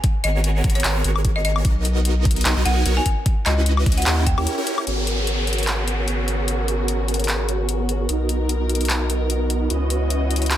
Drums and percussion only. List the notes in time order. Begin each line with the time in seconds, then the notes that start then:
0.04 kick, closed hi-hat
0.24 closed hi-hat
0.44 closed hi-hat
0.64 kick, closed hi-hat
0.70 closed hi-hat
0.75 closed hi-hat
0.80 closed hi-hat
0.84 clap, closed hi-hat
1.04 closed hi-hat
1.16 high woodblock
1.25 kick, closed hi-hat
1.45 closed hi-hat
1.56 high woodblock
1.65 kick, closed hi-hat
1.85 closed hi-hat
2.05 closed hi-hat
2.25 kick, closed hi-hat
2.31 closed hi-hat
2.36 closed hi-hat
2.41 closed hi-hat
2.45 clap, closed hi-hat
2.65 closed hi-hat
2.86 closed hi-hat
3.06 kick, closed hi-hat
3.26 kick, closed hi-hat
3.46 clap, closed hi-hat
3.66 closed hi-hat
3.77 high woodblock
3.86 kick, closed hi-hat
3.92 closed hi-hat
3.98 closed hi-hat
4.02 closed hi-hat
4.06 clap, closed hi-hat
4.27 kick, closed hi-hat
4.38 high woodblock
4.47 closed hi-hat
4.67 closed hi-hat
4.78 high woodblock
4.87 closed hi-hat
5.07 closed hi-hat
5.27 closed hi-hat
5.47 closed hi-hat
5.53 closed hi-hat
5.58 closed hi-hat
5.63 closed hi-hat
5.67 clap, closed hi-hat
5.88 closed hi-hat
6.08 closed hi-hat
6.28 closed hi-hat
6.48 closed hi-hat
6.68 closed hi-hat
6.88 closed hi-hat
7.08 closed hi-hat
7.14 closed hi-hat
7.20 closed hi-hat
7.24 closed hi-hat
7.28 clap, closed hi-hat
7.49 closed hi-hat
7.69 closed hi-hat
7.89 closed hi-hat
8.09 closed hi-hat
8.29 closed hi-hat
8.49 closed hi-hat
8.70 closed hi-hat
8.75 closed hi-hat
8.81 closed hi-hat
8.85 closed hi-hat
8.90 clap, closed hi-hat
9.10 closed hi-hat
9.30 closed hi-hat
9.50 closed hi-hat
9.70 closed hi-hat
9.90 closed hi-hat
10.10 closed hi-hat
10.31 closed hi-hat
10.36 closed hi-hat
10.42 closed hi-hat
10.46 closed hi-hat
10.51 clap, closed hi-hat